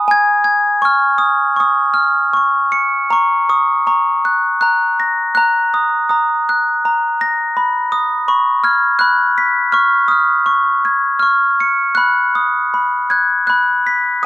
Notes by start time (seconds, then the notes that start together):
Already playing: B5 D#6
0.08 G#5 G#6
0.44 G#6
0.82 C#6 F6
1.18 D#6
1.56 C#6 D#6
1.94 F6
2.33 C#6
2.72 C#7
3.10 A#5 C#6
3.49 C#6 D#6
3.87 A#5 C#6
4.25 F#6
4.61 A#5 F#6
5.00 A#6
5.35 A#5 F#6
5.74 D#6
6.09 A#5 D#6
6.49 F#6
6.85 A#5
7.21 A#6
7.57 B5
7.92 D#6
8.28 B5 C#6
8.64 F6 G#6
8.99 B5 F#6
9.38 B6
9.72 C#6 F6
10.08 D#6 F6
10.46 C#6
10.85 G#6
11.19 C#6 F6
11.60 C#7
11.95 B5 F#6
12.35 D#6
12.74 B5
13.10 F#6 G#6
13.47 B5 F#6
13.87 B6